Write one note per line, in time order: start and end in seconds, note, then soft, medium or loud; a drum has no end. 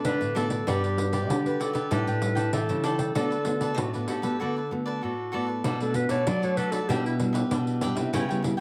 0.00 0.13 A3 soft
0.00 0.13 B3 soft
0.00 0.14 F#4 medium
0.04 0.64 D3 medium
0.04 0.34 D4 soft
0.04 0.34 A4 soft
0.04 0.38 B4 loud
0.04 0.35 B4 soft
0.04 0.36 D5 soft
0.04 pandeiro medium
0.21 0.61 A2 medium
0.21 pandeiro soft
0.35 0.65 A3 medium
0.35 0.65 B3 medium
0.35 0.50 D4 medium
0.35 0.65 F#4 medium
0.35 0.50 A4 medium
0.35 0.68 A4 medium
0.35 0.50 B4 medium
0.35 0.49 D5 medium
0.35 pandeiro medium
0.50 0.67 A4 soft
0.50 0.66 B4 soft
0.50 0.65 D5 soft
0.50 pandeiro medium
0.67 1.29 G2 medium
0.67 1.26 G3 medium
0.67 0.85 D4 medium
0.67 0.86 F#4 soft
0.67 0.82 F#4 medium
0.67 0.82 G4 medium
0.67 1.27 G4 medium
0.67 0.86 B4 medium
0.67 0.83 B4 medium
0.67 0.83 D5 medium
0.67 pandeiro medium
0.84 0.97 G4 soft
0.84 0.97 B4 soft
0.84 0.98 D5 soft
0.84 pandeiro soft
0.97 1.27 D4 medium
0.97 1.27 F#4 medium
0.97 1.27 B4 medium
0.97 muted cavaquinho stroke soft
0.97 pandeiro medium
1.12 1.44 G4 medium
1.12 1.44 B4 medium
1.12 1.43 D5 medium
1.12 pandeiro medium
1.29 1.88 D3 medium
1.29 1.62 G4 medium
1.29 pandeiro medium
1.45 1.87 D4 medium
1.45 1.87 F#4 medium
1.45 1.59 G4 soft
1.45 1.87 B4 medium
1.45 1.60 B4 soft
1.45 1.60 D5 soft
1.45 pandeiro soft
1.60 1.75 F#4 soft
1.60 1.74 G4 soft
1.60 1.95 A4 medium
1.60 1.74 B4 soft
1.60 1.72 D5 medium
1.60 pandeiro medium
1.73 1.90 G4 medium
1.73 1.90 B4 medium
1.73 1.89 D5 medium
1.73 pandeiro soft
1.91 2.51 A2 medium
1.91 2.18 G3 medium
1.91 2.06 D4 medium
1.91 2.18 D4 medium
1.91 2.18 E4 medium
1.91 2.06 A4 medium
1.91 2.53 B4 medium
1.91 2.07 D5 medium
1.91 2.06 G5 medium
1.91 pandeiro medium
2.07 2.47 A2 medium
2.07 2.21 A4 soft
2.07 2.22 D5 soft
2.07 2.22 G5 soft
2.07 pandeiro soft
2.21 2.51 G3 medium
2.21 2.51 D4 soft
2.21 2.52 E4 medium
2.21 muted cavaquinho stroke soft
2.21 pandeiro medium
2.35 2.52 A4 medium
2.35 2.52 D5 medium
2.35 2.51 G5 medium
2.35 pandeiro medium
2.53 2.67 A2 medium
2.53 3.13 E3 medium
2.53 2.82 D4 soft
2.53 3.12 A4 medium
2.53 2.83 A4 soft
2.53 2.84 D5 soft
2.53 2.85 G5 soft
2.53 pandeiro medium
2.69 3.09 C#3 medium
2.69 3.12 G3 medium
2.69 3.12 E4 medium
2.69 pandeiro soft
2.84 2.99 D4 medium
2.84 2.99 A4 medium
2.84 2.98 D5 medium
2.84 2.98 G5 medium
2.84 pandeiro medium
2.99 3.14 A4 soft
2.99 3.14 D5 soft
2.99 3.14 G5 soft
2.99 pandeiro medium
3.15 3.75 D3 medium
3.15 3.35 A3 medium
3.15 3.35 B3 medium
3.15 3.30 F#4 medium
3.15 3.35 F#4 medium
3.15 3.30 A4 medium
3.15 3.74 A4 loud
3.15 3.30 B4 medium
3.15 3.29 D5 medium
3.15 pandeiro medium
3.30 3.46 A4 soft
3.30 3.46 B4 soft
3.30 3.46 D5 soft
3.30 pandeiro soft
3.45 3.88 A3 soft
3.45 3.88 B3 soft
3.45 3.89 F#4 medium
3.45 muted cavaquinho stroke soft
3.45 pandeiro medium
3.61 3.93 A4 medium
3.61 3.92 B4 medium
3.61 3.92 D5 medium
3.61 pandeiro medium
3.78 4.37 A2 soft
3.78 3.92 F#4 medium
3.78 pandeiro medium
3.93 4.21 A3 medium
3.93 4.21 B3 medium
3.93 4.21 F#4 medium
3.93 4.08 A4 soft
3.93 4.08 B4 soft
3.93 4.08 D5 medium
3.93 pandeiro soft
4.08 4.23 F#4 medium
4.08 4.42 G4 medium
4.08 4.23 A4 soft
4.08 4.22 B4 soft
4.08 4.21 D5 soft
4.08 pandeiro medium
4.22 4.35 A3 medium
4.22 4.35 B3 medium
4.22 4.35 F#4 medium
4.22 4.39 A4 medium
4.22 4.38 B4 medium
4.22 4.38 D5 medium
4.22 pandeiro soft
4.40 5.00 D3 medium
4.40 4.59 A3 soft
4.40 4.60 B3 medium
4.40 4.55 F#4 medium
4.40 4.60 F#4 medium
4.40 4.75 A4 medium
4.40 4.55 A4 medium
4.40 4.55 B4 medium
4.40 4.55 D5 medium
4.56 4.70 A4 soft
4.56 4.71 B4 soft
4.56 4.71 D5 soft
4.71 5.12 A3 medium
4.71 5.12 B3 medium
4.71 5.12 F#4 soft
4.71 muted cavaquinho stroke soft
4.86 5.01 A4 medium
4.86 5.01 B4 medium
4.86 5.01 D5 medium
5.02 5.62 A2 medium
5.02 5.31 F#4 soft
5.02 5.61 F#4 medium
5.02 5.31 A4 soft
5.02 5.32 B4 soft
5.02 5.33 D5 soft
5.32 5.62 A3 medium
5.32 5.63 B3 medium
5.32 5.47 F#4 medium
5.32 5.63 F#4 medium
5.32 5.48 A4 medium
5.32 5.47 B4 medium
5.32 5.45 D5 medium
5.47 5.64 A4 soft
5.47 5.63 B4 soft
5.47 5.62 D5 soft
5.64 6.25 B2 medium
5.64 5.75 A3 medium
5.64 5.79 D4 medium
5.64 5.75 D4 soft
5.64 5.75 F#4 medium
5.64 5.80 A4 medium
5.64 5.80 B4 medium
5.64 5.79 D5 medium
5.64 pandeiro medium
5.80 5.92 A3 medium
5.80 5.92 D4 medium
5.80 5.92 F#4 medium
5.80 5.97 A4 medium
5.80 5.94 A4 soft
5.80 5.94 B4 soft
5.80 5.95 D5 soft
5.80 pandeiro soft
5.94 6.37 A3 soft
5.94 6.38 D4 soft
5.94 6.38 F#4 medium
5.94 6.12 B4 medium
5.94 muted cavaquinho stroke soft
5.94 pandeiro medium
6.09 6.24 B2 medium
6.09 6.41 A4 medium
6.09 6.41 B4 medium
6.09 6.28 C#5 medium
6.09 6.40 D5 medium
6.09 pandeiro medium
6.27 6.86 F#3 medium
6.27 6.45 D5 medium
6.27 pandeiro medium
6.42 6.85 A3 medium
6.42 6.85 D4 medium
6.42 6.85 F#4 medium
6.42 6.57 A4 soft
6.42 6.57 B4 soft
6.42 6.58 C#5 medium
6.42 6.57 D5 soft
6.42 pandeiro soft
6.57 6.72 D4 soft
6.57 6.72 A4 soft
6.57 6.73 B4 medium
6.57 6.72 B4 soft
6.57 6.71 D5 medium
6.57 pandeiro medium
6.72 6.90 A4 medium
6.72 6.88 A4 medium
6.72 6.88 B4 medium
6.72 6.87 D5 medium
6.72 pandeiro medium
6.89 7.49 B2 medium
6.89 7.16 G3 medium
6.89 7.04 D4 medium
6.89 7.16 D4 medium
6.89 7.17 E4 medium
6.89 7.05 G4 medium
6.89 7.04 G4 medium
6.89 7.04 B4 medium
6.89 7.05 E5 medium
6.89 pandeiro medium
7.05 7.15 E4 medium
7.05 7.19 G4 soft
7.05 7.19 B4 soft
7.05 7.19 E5 soft
7.05 pandeiro soft
7.20 7.78 G3 medium
7.20 7.78 D4 medium
7.20 7.78 E4 medium
7.20 muted cavaquinho stroke soft
7.20 pandeiro medium
7.33 7.50 G4 medium
7.33 7.49 B4 medium
7.33 7.49 E5 medium
7.33 pandeiro medium
7.51 8.11 B2 medium
7.51 7.80 D4 soft
7.51 7.81 G4 soft
7.51 7.82 B4 soft
7.51 7.82 E5 soft
7.51 pandeiro medium
7.67 pandeiro soft
7.81 8.11 G3 medium
7.81 7.96 D4 medium
7.81 8.12 D4 medium
7.81 8.12 E4 medium
7.81 7.97 G4 medium
7.81 7.96 B4 medium
7.81 7.94 E5 medium
7.81 pandeiro medium
7.95 8.10 C3 medium
7.95 8.12 G4 soft
7.95 8.12 B4 soft
7.95 8.11 E5 soft
7.95 pandeiro medium
8.13 8.60 C#3 medium
8.13 8.23 G3 medium
8.13 8.24 B3 medium
8.13 8.28 E4 medium
8.13 8.24 E4 medium
8.13 8.28 B4 medium
8.13 8.29 C#5 medium
8.13 8.28 G5 medium
8.13 pandeiro medium
8.29 8.41 G3 medium
8.29 8.41 B3 medium
8.29 8.41 E4 medium
8.29 8.41 B4 soft
8.29 8.42 C#5 soft
8.29 8.43 G5 soft
8.29 pandeiro soft
8.42 8.60 G3 medium
8.42 8.60 B3 medium
8.42 8.60 E4 medium
8.42 muted cavaquinho stroke soft
8.42 pandeiro medium
8.57 8.60 G5 medium